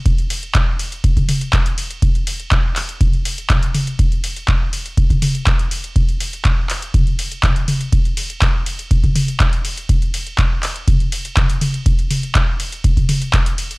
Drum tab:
RD |x-x-x-x-x-x-x-x-|x-x-x-x-x-x-x-x-|x-x-x-x-x-x-x-x-|x-x-x-x-x-x-x-x-|
HH |xxoxx-oxxxoxxxox|xxoxx-oxxxoxxxox|xxoxx-oxxxoxxxox|xxoxx-oxxxoxxxox|
CP |----x-------x---|----x-x-----x---|----x-------x---|----x-x-----x---|
T2 |---------oo-----|--------o---o-o-|---------oo-----|--------o---o-o-|
BD |o---o---oo--o---|o---o---o---o---|o---o---oo--o---|o---o---o---o---|

RD |x-x-x-x-x-x-x-x-|x-x-x-x-x-x-x-x-|x-x-x-x-x-x-x-x-|
HH |xxoxx-oxxxoxxxox|xxoxx-oxxxoxxxox|xxoxx-oxxxoxxxox|
CP |----x-------x---|----x-x-----x---|----x-------x---|
T2 |---------oo-----|--------o---o-o-|--o------oo-----|
BD |o---o---oo--o---|o---o---o---o---|o---o---oo--o---|